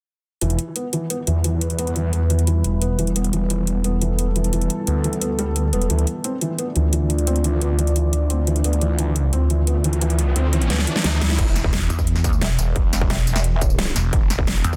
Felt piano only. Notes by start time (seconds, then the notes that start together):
0.42 E3
0.76 B3
0.93 E3
1.10 B3
1.27 E3
1.44 E3
1.79 B3
1.96 E3
2.13 B3
2.30 E3
2.47 E3
2.82 B3
2.99 E3
3.16 B3
3.33 E3
3.50 E3
3.84 B3
4.02 E3
4.19 B3
4.36 E3
4.53 E3
4.87 B3
5.04 E3
5.21 B3
5.39 G3
5.56 B3
5.73 B3
5.90 E3
6.24 C4
6.42 E3
6.59 B3
6.76 E3
6.93 E3
7.27 C4
7.44 E3
7.62 B3
7.79 E3
7.96 E3
8.30 C4
8.47 E3
8.64 B3
8.82 E3
8.99 E3
9.33 C4
9.50 E3
9.67 B3
9.85 E3
10.02 E3
10.36 C4
10.53 E3
10.70 B3
10.87 E3
11.04 E3